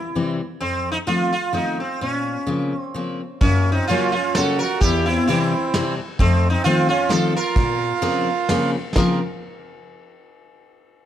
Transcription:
Already playing: sitar E4
0.15 steel-string acoustic guitar C3 E3 G3 C4
0.61 steel-string acoustic guitar F2, sitar C4
0.92 sitar D#4
1.07 steel-string acoustic guitar D#3 F3 A3 C4, sitar F4
1.33 sitar F4
1.53 steel-string acoustic guitar D#3 F3 A3 C4, sitar D#4
1.80 sitar C4
2.01 steel-string acoustic guitar A#2, sitar C#4
2.47 steel-string acoustic guitar C#3 F3 A#3 C4
2.77 sitar C4
2.94 steel-string acoustic guitar C#3 F3 A#3 C4
3.41 steel-string acoustic guitar F#2, accordion A#3, sitar C#4, kick, ride
3.72 accordion C4, sitar D#4
3.88 steel-string acoustic guitar C#3 F#3 A#3 C#4, accordion C#4, sitar F4, ride
4.12 accordion C#4, sitar F4
4.35 steel-string acoustic guitar C#3 F#3 A#3 C#4, accordion F#4, sitar A4, snare, ride
4.59 accordion F#4, sitar A#4
4.80 steel-string acoustic guitar E2, accordion E4, sitar G4, kick, ride
5.06 accordion C4, sitar E4
5.27 steel-string acoustic guitar C3 E3 G3 C4, accordion C4, sitar E4, ride
5.74 steel-string acoustic guitar C3 E3 G3 C4, snare, ride
6.19 steel-string acoustic guitar F2, accordion A3, sitar C4, kick, ride
6.50 accordion C4, sitar D#4
6.64 steel-string acoustic guitar D#3 F3 A3 C4, accordion C4, sitar F4, ride
6.89 accordion C#4, sitar F4
7.09 steel-string acoustic guitar D#3 F3 A3 C4, accordion F4, sitar A4, snare, ride
7.36 accordion F4, sitar A#4
7.56 steel-string acoustic guitar A#2, kick, ride
8.02 steel-string acoustic guitar C#3 F3 A#3 C4, ride
8.49 steel-string acoustic guitar C#3 F3 A#3 C4, snare, ride
8.96 steel-string acoustic guitar C#3 F3 A#3 C4, accordion F4, sitar A#4, kick, snare, crash

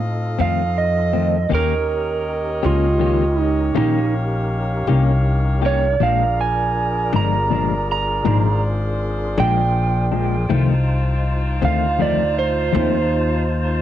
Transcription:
Already playing: upright bass A2, tonewheel organ C4 D#4 F4 A4, horn section A4 D#5 F5
0.39 upright bass F2, clean electric guitar D#3 A3 C4, electric slide guitar F5
0.78 electric slide guitar D#5
1.13 clean electric guitar D#3 A3 C4
1.49 upright bass D#2, clean electric guitar D#3 A#3 C#4 G4, tonewheel organ C#4 D#4 G4 A#4, horn section D#5
1.54 horn section G4 C#5, electric slide guitar A#4
2.63 upright bass C#2, clean electric guitar A#3 C#4 G4, electric slide guitar F4
2.99 clean electric guitar D#3 A#3 C#4 G4
3.40 electric slide guitar D#4
3.75 upright bass A#1, clean electric guitar D#3 A#3 C#4 G4, electric slide guitar D#4, horn section F5
4.87 upright bass C2, clean electric guitar A#3 C#4 G4
5.62 clean electric guitar A#3 C#4 G4, electric slide guitar C#5
6.00 upright bass A#1, clean electric guitar A#2 F3 G#3 D4, tonewheel organ D4 F4 G#4 A#4, horn section G#4, electric slide guitar F5
6.04 horn section A#4 D5
6.41 electric slide guitar G#5
7.12 upright bass G1, clean electric guitar F3 G#3 D4, electric slide guitar A#5
7.50 clean electric guitar A#2 F3 G#3 D4
7.92 electric slide guitar A#5
8.25 upright bass G#1, clean electric guitar A#2 F3 G#3 D4, horn section C5
9.37 upright bass A#1, clean electric guitar F3 G#3 D4, electric slide guitar G5
10.12 clean electric guitar F3 G#3 D4
10.49 upright bass C2, clean electric guitar F2 D#3 A3 C4, tonewheel organ D#4 F4 C5 A5, horn section D#4 F4 C5
11.62 upright bass D2, clean electric guitar D#3 A3 C4, electric slide guitar F5
11.99 clean electric guitar F2 D#3 A3 C4, electric slide guitar D5
12.39 electric slide guitar C5
12.73 upright bass D#2, clean electric guitar F2 D#3 A3 C4

